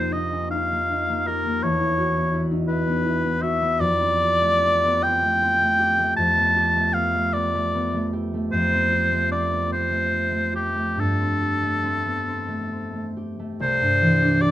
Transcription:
Already playing: harp F2 A#3 C4 D#4 G4, oboe C5
0.12 harp D#4, oboe D#5
0.32 harp C#4
0.51 harp D#4, oboe F5
0.72 harp A#3
0.92 harp D#4
1.10 harp A#3
1.27 harp G4, oboe A#4
1.45 harp A#3
1.63 harp E2, oboe C#5
1.81 harp E4
1.98 harp F#4
2.16 harp B3
2.34 harp E4
2.51 harp D#4
2.68 harp E4, oboe B4
2.87 harp B3
3.05 harp E4
3.24 harp B3
3.42 harp F#4, oboe E5
3.62 harp B3
3.80 harp F2, oboe D5
4.00 harp C4
4.20 harp G4
4.41 harp A3
4.62 harp C4
4.84 harp B3
5.03 harp C4, oboe G5
5.22 harp A3
5.42 harp C4
5.61 harp A3
5.79 harp G4
6.00 harp A3
6.17 harp F2, oboe A5
6.37 harp B3
6.56 harp G4
6.76 harp A3
6.94 harp B3, oboe F5
7.15 harp A3
7.33 harp B3, oboe D5
7.55 harp A3
7.74 harp B3
7.94 harp A3
8.13 harp G4
8.34 harp A3
8.52 harp F2, oboe C5
8.72 harp C4
8.92 harp G4
9.12 harp A3
9.32 harp C4, oboe D5
9.51 harp B3
9.71 harp C4, oboe C5
9.90 harp A3
10.12 harp C4
10.31 harp A3
10.53 harp G4, oboe G4
10.75 harp A3
10.97 harp G2, oboe A4
11.20 harp C4
11.41 harp G4
11.63 harp A3
11.84 harp C4
12.05 harp B3
12.27 harp C4
12.48 harp A3
12.71 harp C4
12.93 harp A3
13.17 harp G4
13.39 harp A3
13.60 harp C2, oboe C5
13.82 harp G2
14.02 harp E3
14.21 harp D4
14.41 harp G4, oboe D5

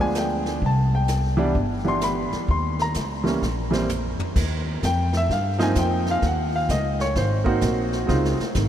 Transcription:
Already playing: upright bass D2
0.00 grand piano F3 G#3 B3 D4 G#5
0.15 grand piano G5, snare, hi-hat pedal
0.46 snare
0.62 upright bass C2, brush sweep, kick
0.66 grand piano A5
0.95 grand piano G5
1.08 snare, hi-hat pedal
1.37 grand piano E3 G3 B3 D4
1.55 upright bass G1, brush sweep, kick
1.84 grand piano E3 G3 B3 D4 C6
2.01 grand piano B5, snare, hi-hat pedal
2.32 muted upright bass stroke, snare
2.48 upright bass D#2, grand piano C6, brush sweep, kick
2.79 grand piano A#5, snare
2.94 upright bass C#2, snare, hi-hat pedal
3.24 grand piano E3 G3 A#3 C#4, snare
3.42 upright bass A#1, snare
3.71 grand piano E3 G3 A#3 C4, snare
3.89 floor tom, hi-hat pedal
4.20 muted upright bass stroke, floor tom
4.36 upright bass D#2, brush sweep, kick, snare, crash
4.83 upright bass F2, grand piano G5, kick, snare, hi-hat pedal
5.13 snare
5.17 grand piano E5
5.29 upright bass G2, grand piano F5, brush sweep, kick, snare
5.59 grand piano F3 A#3 C4 D#4, snare
5.63 grand piano G#5
5.75 upright bass F2, grand piano G5, kick, snare, hi-hat pedal
6.06 snare
6.11 grand piano F5
6.22 upright bass D#2, brush sweep, kick, snare
6.26 grand piano F#5
6.56 grand piano F5
6.69 upright bass C#2, grand piano D#5, kick, snare, hi-hat pedal
7.00 grand piano C#5, snare
7.15 upright bass G#1, grand piano C5, brush sweep, kick, snare
7.44 grand piano A#3 C4 D#4 F#4, kick
7.61 upright bass A#1, kick, snare, hi-hat pedal
7.93 snare
8.07 upright bass C#2, grand piano G#3 C4 D#4 F4, brush sweep, kick, snare
8.25 snare
8.40 muted upright bass stroke, snare
8.55 upright bass G#1, kick, snare, hi-hat pedal

